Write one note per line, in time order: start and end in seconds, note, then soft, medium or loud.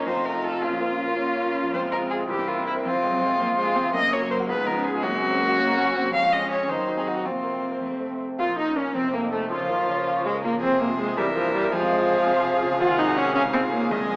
0.00 0.64 D#4 medium
0.06 0.60 F2 medium
0.06 0.63 A3 soft
0.06 1.17 F4 medium
0.06 0.26 C5 medium
0.16 0.31 C3 soft
0.25 0.40 A3 soft
0.25 0.45 A#4 medium
0.34 0.49 D#4 soft
0.43 0.58 F4 soft
0.43 0.63 A4 medium
0.52 0.61 A4 soft
0.61 1.69 A#2 medium
0.61 1.17 A#3 soft
0.61 0.82 C#4 medium
0.61 1.73 F4 medium
0.72 0.86 F3 soft
0.80 0.95 A#3 soft
0.80 1.00 C4 medium
0.90 1.05 C#4 soft
0.98 1.18 C#4 medium
0.98 1.14 F4 soft
1.07 1.23 A#4 soft
1.16 1.74 A#3 soft
1.16 1.75 C#4 soft
1.16 2.26 F4 medium
1.16 1.32 C#5 soft
1.26 1.41 F5 soft
1.35 1.50 C#5 soft
1.44 1.59 A#4 soft
1.54 1.69 C#4 soft
1.64 1.73 F3 soft
1.73 2.27 F2 medium
1.73 2.28 G#3 medium
1.73 2.28 C4 soft
1.73 1.81 C5 medium
1.83 1.98 C3 soft
1.92 2.07 G#3 soft
1.92 1.99 A#4 medium
2.02 2.16 C4 soft
2.10 2.26 F4 soft
2.10 2.18 G#4 medium
2.20 2.29 G#4 soft
2.28 2.83 C2 medium
2.28 2.83 E3 medium
2.28 3.37 C4 medium
2.28 2.83 E4 medium
2.28 2.49 G4 medium
2.39 2.53 G2 soft
2.48 2.62 A#3 soft
2.48 2.66 F4 medium
2.57 2.72 C4 soft
2.66 2.74 E4 medium
2.66 2.81 E4 soft
2.76 2.85 A#4 soft
2.84 3.92 F2 medium
2.84 2.92 F3 medium
2.84 3.38 C4 medium
2.84 3.92 F4 medium
2.94 3.09 C3 soft
3.03 3.23 F#3 medium
3.03 3.18 G#3 soft
3.13 3.27 C4 soft
3.22 3.42 G#3 medium
3.22 3.36 F4 medium
3.31 3.45 G#4 soft
3.39 3.96 F3 medium
3.39 3.57 A#3 medium
3.39 3.93 C4 medium
3.39 3.55 C5 medium
3.49 3.64 F5 medium
3.58 3.77 G#3 medium
3.58 3.73 C5 medium
3.67 3.82 G#4 medium
3.76 3.90 C4 medium
3.76 3.94 C4 medium
3.86 3.95 C3 soft
3.94 4.47 F#2 medium
3.94 4.48 F#3 medium
3.94 4.47 A#3 medium
3.94 4.50 A#3 medium
3.94 4.14 D#5 loud
4.03 4.18 C#3 soft
4.12 4.27 F#3 medium
4.12 4.30 C#5 medium
4.22 4.36 A#3 soft
4.30 4.45 A#4 medium
4.30 4.38 C5 medium
4.40 4.49 F#4 medium
4.48 5.02 C#2 medium
4.48 5.05 G#3 medium
4.48 5.60 G#3 medium
4.48 5.04 B3 medium
4.48 4.68 B4 medium
4.58 4.72 G#2 medium
4.66 4.81 F3 medium
4.66 4.84 A#4 medium
4.76 4.90 C#4 medium
4.85 5.05 G#4 medium
4.85 5.00 G#4 medium
4.94 5.03 F4 soft
5.03 6.10 F#2 medium
5.03 5.20 A#3 medium
5.03 6.12 C#4 medium
5.03 6.13 F#4 loud
5.12 5.27 C#3 soft
5.21 5.36 F#3 medium
5.21 5.41 C4 medium
5.30 5.45 C#4 medium
5.39 5.59 A#3 medium
5.39 5.54 A#4 medium
5.49 5.64 F#4 medium
5.57 5.77 G#3 medium
5.57 5.78 A#3 medium
5.57 5.72 C#5 medium
5.67 5.82 A#5 medium
5.76 5.96 F#3 medium
5.76 5.97 C#4 medium
5.76 5.91 C#5 medium
5.85 6.00 F#4 medium
5.94 6.12 A#3 medium
5.94 6.13 C4 medium
5.94 6.09 C#4 medium
6.04 6.13 C#3 soft
6.12 6.67 F2 medium
6.12 6.70 G#3 medium
6.12 6.71 C#4 medium
6.12 6.34 F5 loud
6.22 6.37 F3 soft
6.31 6.46 G#3 soft
6.31 6.50 D#5 medium
6.40 6.55 C#4 soft
6.49 6.65 G#4 soft
6.49 6.70 C#5 medium
6.59 6.69 C#4 soft
6.68 7.23 D#2 soft
6.68 7.27 F#3 soft
6.68 7.27 D#4 medium
6.68 6.99 C5 medium
6.78 6.93 D#3 soft
6.87 7.02 F#3 soft
6.96 7.12 C4 soft
6.96 7.08 G#4 medium
7.06 7.27 F#4 medium
7.06 7.21 C5 soft
7.16 7.25 F#4 soft
7.25 7.79 F2 soft
7.25 7.84 A#3 soft
7.25 7.83 C4 soft
7.25 8.11 C4 soft
7.25 7.82 F4 medium
7.34 7.50 C3 soft
7.44 7.59 A#3 soft
7.52 7.68 C4 soft
7.62 7.78 C5 soft
7.72 7.82 A#4 soft
7.81 8.37 F2 soft
7.81 8.21 A3 soft
7.81 8.20 C4 soft
7.91 8.07 C3 soft
8.00 8.16 A3 soft
8.11 8.26 C4 soft
8.20 8.35 C5 soft
8.29 8.39 A4 soft
8.39 8.94 A#2 medium
8.39 8.47 F4 medium
8.39 8.57 F4 medium
8.48 8.63 F3 soft
8.58 8.73 A#3 soft
8.58 8.76 D#4 medium
8.58 8.79 D#4 medium
8.67 8.83 C#4 soft
8.76 8.95 C#4 medium
8.76 8.97 C#4 medium
8.76 8.96 C#4 medium
8.76 8.91 A#4 soft
8.86 8.95 C#4 soft
8.95 9.49 F2 medium
8.95 9.52 C3 medium
8.95 9.15 C4 medium
8.95 9.03 C4 medium
8.95 9.14 C4 medium
9.04 9.19 C3 soft
9.14 9.29 A3 soft
9.14 9.21 A#3 medium
9.14 9.31 A#3 medium
9.14 9.33 A#3 medium
9.23 9.38 D#4 soft
9.32 9.40 A3 medium
9.32 9.51 A3 medium
9.32 9.47 C5 soft
9.42 9.51 A4 soft
9.51 10.59 A#2 medium
9.51 9.71 C#3 medium
9.51 10.27 F3 medium
9.51 10.24 F4 medium
9.61 9.75 F3 soft
9.69 9.89 D#3 medium
9.69 9.84 A#3 soft
9.79 9.94 F4 soft
9.88 10.63 C#3 medium
9.88 10.03 C#5 soft
9.98 10.13 A#4 soft
10.07 10.22 F5 soft
10.16 10.31 C#6 medium
10.25 10.43 G#3 medium
10.25 10.33 G#3 medium
10.25 10.44 G#3 medium
10.25 10.40 F5 medium
10.34 10.49 A#4 medium
10.44 10.61 A#3 medium
10.44 10.51 A#3 medium
10.44 10.59 F4 soft
10.53 10.62 F3 soft
10.62 11.16 F2 medium
10.62 11.18 C3 medium
10.62 10.80 C4 medium
10.62 11.18 G#4 medium
10.62 11.19 C5 medium
10.72 10.86 C3 soft
10.80 10.95 G#3 soft
10.80 10.88 A#3 medium
10.90 11.04 F4 soft
10.99 11.17 G#3 medium
10.99 11.14 C5 medium
11.08 11.17 G#4 medium
11.17 11.70 C2 medium
11.17 11.70 E3 medium
11.17 11.25 G3 medium
11.17 11.74 A#4 medium
11.17 11.73 E5 medium
11.27 11.41 G2 soft
11.36 11.53 F3 medium
11.36 11.50 A#3 medium
11.46 11.60 E4 medium
11.54 11.71 G3 medium
11.54 11.69 C5 medium
11.64 11.72 A#4 medium
11.71 12.78 F2 medium
11.71 12.83 F3 medium
11.71 12.27 G#3 medium
11.71 13.90 G#4 medium
11.71 12.81 F5 medium
11.82 11.96 C3 soft
11.92 12.05 G#3 medium
12.01 12.15 F4 medium
12.10 12.23 C5 medium
12.18 12.32 G#4 medium
12.26 12.43 C3 medium
12.26 12.41 F5 medium
12.36 12.50 C6 medium
12.44 12.51 C3 medium
12.44 12.59 F5 medium
12.53 12.68 G#4 medium
12.62 12.82 C#3 medium
12.62 12.77 F4 medium
12.72 12.81 C3 soft
12.80 13.34 D#2 medium
12.80 13.89 C3 medium
12.80 13.00 F4 loud
12.80 13.37 F#5 medium
12.89 13.04 D#3 medium
12.98 13.13 G#3 medium
12.98 13.18 D#4 medium
13.08 13.23 F#4 medium
13.17 13.34 C#4 medium
13.17 13.32 C5 medium
13.27 13.36 G#4 medium
13.34 13.89 C#2 medium
13.34 13.42 C#4 loud
13.34 13.93 F5 medium
13.45 13.59 G#2 soft
13.53 13.69 G#3 medium
13.53 13.61 C4 medium
13.63 13.78 F4 medium
13.72 13.92 A#3 medium
13.72 13.87 C#5 medium
13.82 13.91 G#4 medium
13.90 14.16 C2 medium
13.90 13.97 D#3 medium
13.90 14.16 G#3 medium
13.90 14.16 G#4 medium
13.90 14.16 D#5 medium
14.00 14.14 C3 soft
14.09 14.16 F3 medium
14.09 14.16 G#3 medium